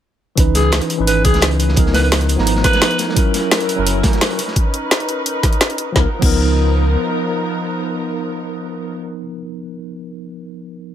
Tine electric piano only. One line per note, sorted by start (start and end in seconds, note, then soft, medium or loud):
0.36 0.96 E3 medium
0.36 0.96 C#4 medium
0.36 0.97 D#4 medium
0.40 0.98 B4 medium
0.97 1.74 E3 medium
0.97 1.75 C#4 medium
0.97 1.76 D#4 medium
1.01 1.76 B4 medium
1.75 2.35 F3 medium
1.75 2.36 B3 medium
1.75 2.37 D#4 medium
1.80 2.38 A#4 medium
2.36 3.13 F3 medium
2.36 3.14 B3 medium
2.36 3.15 D#4 medium
2.41 3.16 A#5 medium
3.14 3.74 F#3 medium
3.14 3.75 C#4 medium
3.14 3.76 E4 medium
3.19 3.77 A#4 medium
3.75 4.36 F#3 medium
3.75 4.37 C#4 medium
3.75 4.38 E4 medium
3.80 4.39 A#4 medium
5.92 6.04 F3 medium
5.92 6.05 B3 medium
5.97 6.06 D#4 medium
5.97 6.08 A#4 medium
6.19 9.20 F3 medium
6.19 9.22 B3 medium
6.23 9.24 D#4 medium
6.23 9.27 A#4 medium